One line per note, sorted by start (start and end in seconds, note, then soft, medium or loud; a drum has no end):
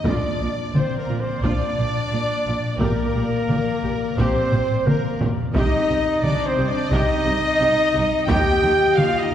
0.04 0.13 A#1 medium
0.04 0.13 A#2 medium
0.04 0.73 D4 medium
0.04 0.39 F4 medium
0.04 0.49 D5 medium
0.04 0.75 D5 medium
0.04 0.51 D5 medium
0.04 0.74 D5 medium
0.04 5.52 D5 medium
0.04 taiko medium
0.38 0.46 A#1 medium
0.38 0.49 A#2 medium
0.38 0.49 F4 soft
0.73 0.81 A#1 medium
0.73 0.83 A#2 medium
0.73 0.98 C4 medium
0.73 0.83 F4 medium
0.73 0.96 C5 medium
0.73 0.98 C5 medium
0.73 1.02 C5 medium
0.73 0.99 C5 medium
0.73 taiko mid medium
0.97 1.21 A#3 medium
0.97 1.22 A#4 medium
0.97 1.21 A#4 medium
1.07 1.15 A#1 medium
1.07 1.18 A#2 medium
1.07 1.16 F4 medium
1.20 1.43 C4 medium
1.20 1.44 C5 medium
1.20 1.43 C5 medium
1.20 1.46 C5 medium
1.20 1.44 C5 medium
1.41 1.49 A#1 medium
1.41 1.52 A#2 medium
1.41 2.80 D4 loud
1.41 1.75 F4 medium
1.41 2.77 D5 medium
1.41 2.80 D5 medium
1.41 2.79 D5 medium
1.41 2.81 D5 medium
1.41 taiko medium
1.77 1.85 A#1 medium
1.77 1.87 A#2 medium
1.77 1.86 F4 medium
2.11 2.20 A#1 medium
2.11 2.21 A#2 medium
2.11 2.19 F4 medium
2.45 2.53 A#1 medium
2.45 2.55 A#2 medium
2.45 2.54 F4 medium
2.79 2.87 A#1 medium
2.79 2.89 A#2 medium
2.79 4.17 A#3 loud
2.79 3.12 G4 medium
2.79 4.15 A#4 medium
2.79 taiko medium
3.13 3.21 A#1 medium
3.13 3.23 A#2 medium
3.13 3.23 G4 medium
3.48 3.56 A#1 medium
3.48 3.57 A#2 medium
3.48 3.57 G4 medium
3.48 taiko mid medium
3.83 3.91 A#1 medium
3.83 3.91 A#2 medium
3.83 3.91 G4 medium
4.16 4.25 A#1 medium
4.16 4.26 A#2 medium
4.16 4.85 C4 loud
4.16 4.50 G4 medium
4.16 4.88 C5 medium
4.16 4.86 C5 medium
4.16 4.88 C5 medium
4.16 4.87 C5 medium
4.16 taiko medium
4.52 4.60 A#1 medium
4.52 4.61 A#2 medium
4.52 4.61 G4 medium
4.52 taiko low-mid medium
4.86 4.94 A#1 medium
4.86 4.94 A#2 medium
4.86 5.21 A#3 medium
4.86 4.94 G4 medium
4.86 5.21 A#4 medium
4.86 taiko mid medium
5.20 5.28 A#1 medium
5.20 5.28 A#2 medium
5.20 5.30 G4 medium
5.20 taiko low loud
5.53 5.61 C2 medium
5.53 5.62 C3 loud
5.53 6.20 D#4 loud
5.53 5.87 G4 medium
5.53 6.24 D#5 loud
5.53 6.19 D#5 loud
5.53 9.35 D#5 medium
5.53 6.20 D#5 medium
5.53 taiko loud
5.88 5.96 C2 medium
5.88 5.96 C3 medium
5.88 5.97 G4 medium
6.22 6.31 C2 medium
6.22 6.30 C3 medium
6.22 6.47 D4 loud
6.22 6.32 G4 medium
6.22 6.48 D5 loud
6.22 6.46 D5 loud
6.22 6.47 D5 loud
6.22 6.46 D5 loud
6.22 taiko mid medium
6.45 6.70 C4 loud
6.45 6.68 C5 medium
6.45 6.69 C5 medium
6.45 6.70 C5 medium
6.57 6.65 C2 medium
6.57 6.65 C3 medium
6.57 6.65 G4 medium
6.68 6.92 D4 loud
6.68 6.91 D5 loud
6.68 6.91 D5 medium
6.68 6.90 D5 medium
6.68 6.95 D5 loud
6.89 6.99 C2 loud
6.89 7.00 C3 medium
6.89 7.24 G4 loud
6.89 8.27 D#5 loud
6.89 8.25 D#5 loud
6.89 8.28 D#5 loud
6.89 taiko medium
6.94 8.29 D#4 loud
6.94 8.29 D#5 loud
7.26 7.34 C2 medium
7.26 7.34 C3 medium
7.26 7.34 G4 medium
7.59 7.68 C2 medium
7.59 7.67 C3 medium
7.59 7.69 G4 medium
7.94 8.02 C2 medium
7.94 8.02 C3 medium
7.94 8.02 G4 medium
8.26 8.36 D#2 loud
8.26 8.37 D#3 loud
8.26 8.60 G4 loud
8.26 8.94 G5 loud
8.26 8.99 G5 loud
8.26 8.97 G5 loud
8.26 taiko loud
8.30 8.98 G4 loud
8.62 8.70 D#2 medium
8.62 8.71 D#3 medium
8.62 8.72 G4 medium
8.95 9.06 D#2 medium
8.95 9.05 D#3 medium
8.95 9.20 F4 loud
8.95 9.06 G4 medium
8.95 9.21 F5 loud
8.95 9.19 F5 loud
8.95 9.22 F5 loud
8.95 taiko mid medium
9.18 9.35 D#4 loud
9.18 9.35 D#5 medium
9.18 9.35 D#5 loud